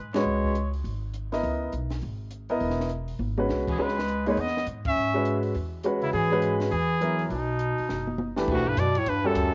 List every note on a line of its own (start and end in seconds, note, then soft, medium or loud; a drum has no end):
0.00 0.24 G#2 medium
0.14 0.69 G#3 medium
0.14 0.53 G#3 medium
0.14 0.54 C#4 soft
0.14 0.54 F#4 medium
0.14 0.54 B4 medium
0.14 0.70 C#5 medium
0.14 snare medium
0.14 ride medium
0.26 0.82 C#2 medium
0.44 kick soft
0.55 closed hi-hat soft
0.73 open hi-hat soft
0.84 1.40 G#1 medium
0.84 open hi-hat soft
1.14 closed hi-hat soft
1.32 1.71 B3 medium
1.32 1.71 E4 medium
1.32 1.71 A#4 medium
1.32 1.71 D#5 medium
1.32 snare soft
1.32 open hi-hat soft
1.43 1.71 C#2 medium
1.43 open hi-hat soft
1.72 2.00 B1 medium
1.72 closed hi-hat soft
1.90 snare soft
1.90 open hi-hat soft
2.02 2.58 G#1 medium
2.02 open hi-hat soft
2.31 closed hi-hat soft
2.49 2.88 B3 medium
2.49 2.88 E4 medium
2.49 2.89 A#4 medium
2.49 2.89 D#5 medium
2.49 open hi-hat soft
2.60 3.17 E1 medium
2.60 open hi-hat soft
2.70 snare soft
2.80 snare soft
2.89 closed hi-hat soft
3.08 open hi-hat soft
3.19 3.47 G#1 medium
3.19 high tom soft
3.38 3.76 G#3 medium
3.38 3.77 C#4 medium
3.38 3.77 F#4 medium
3.38 3.77 B4 medium
3.38 high tom medium
3.49 3.77 C2 medium
3.49 snare soft
3.68 3.80 E3 medium
3.68 3.83 G#4 medium
3.68 kick medium
3.68 crash medium
3.78 4.34 C#2 medium
3.78 3.95 G#3 medium
3.78 4.26 G#3 medium
3.78 3.95 C#4 soft
3.78 3.95 F#4 soft
3.78 3.96 B4 medium
3.78 4.28 B4 medium
3.88 snare soft
3.99 snare soft
4.08 closed hi-hat soft
4.26 4.40 G#3 medium
4.26 4.36 A#3 medium
4.26 4.36 D#4 medium
4.26 4.37 G#4 medium
4.26 4.42 B4 medium
4.26 4.37 C#5 medium
4.26 open hi-hat soft
4.37 4.64 E2 medium
4.37 4.67 B3 medium
4.37 4.68 D#5 medium
4.37 open hi-hat soft
4.47 snare soft
4.57 snare soft
4.67 4.94 G#2 medium
4.67 closed hi-hat soft
4.85 5.41 C#4 medium
4.85 5.41 E5 medium
4.85 kick medium
4.85 ride medium
4.96 5.52 G#2 medium
5.14 5.52 G#3 medium
5.14 5.53 C#4 medium
5.14 5.53 F#4 medium
5.14 5.53 B4 medium
5.25 closed hi-hat soft
5.43 open hi-hat soft
5.55 6.11 E2 medium
5.55 open hi-hat soft
5.83 6.28 G#3 medium
5.83 6.28 C#4 medium
5.83 6.29 F#4 medium
5.83 6.29 B4 medium
5.83 closed hi-hat soft
6.02 6.13 C#3 medium
6.02 6.13 E4 medium
6.02 open hi-hat soft
6.13 6.69 G#2 medium
6.13 6.58 E3 medium
6.13 6.57 G#4 loud
6.13 open hi-hat soft
6.31 6.70 G#3 medium
6.31 6.70 C#4 medium
6.31 6.70 F#4 medium
6.31 6.70 B4 medium
6.42 closed hi-hat soft
6.60 snare soft
6.60 open hi-hat soft
6.71 7.28 E2 medium
6.71 7.26 E3 medium
6.71 7.26 G#4 medium
6.71 open hi-hat soft
7.01 7.30 F#3 medium
7.01 7.31 B3 medium
7.01 7.31 E4 medium
7.01 7.31 A#4 medium
7.01 closed hi-hat soft
7.19 open hi-hat soft
7.29 7.75 B1 medium
7.29 8.32 B2 medium
7.29 8.33 D#4 medium
7.29 open hi-hat soft
7.59 closed hi-hat soft
7.78 muted upright bass stroke soft
7.78 open hi-hat soft
7.89 8.45 F#1 medium
7.89 snare soft
8.07 high tom soft
8.18 high tom medium
8.36 8.75 E3 medium
8.36 8.75 A3 medium
8.36 8.75 D4 medium
8.36 8.75 G4 medium
8.36 8.76 B4 medium
8.36 snare medium
8.47 8.76 B1 medium
8.47 8.69 D2 medium
8.47 8.70 F#4 medium
8.47 kick medium
8.47 crash medium
8.67 8.80 G2 medium
8.67 8.81 B4 medium
8.76 9.05 F#2 medium
8.76 8.99 B2 medium
8.76 9.00 D5 medium
8.76 hi-hat pedal medium
8.76 ride medium
8.95 9.10 A2 medium
8.95 9.11 C#5 medium
8.95 ride soft
9.06 9.35 E2 medium
9.06 9.28 G2 medium
9.06 9.29 B4 medium
9.06 ride medium
9.24 9.54 F#2 medium
9.24 9.54 G3 medium
9.24 9.54 C#4 medium
9.24 9.54 F#4 medium
9.24 9.54 A4 medium
9.24 9.54 A4 loud
9.35 9.54 D2 medium
9.35 hi-hat pedal medium
9.35 ride medium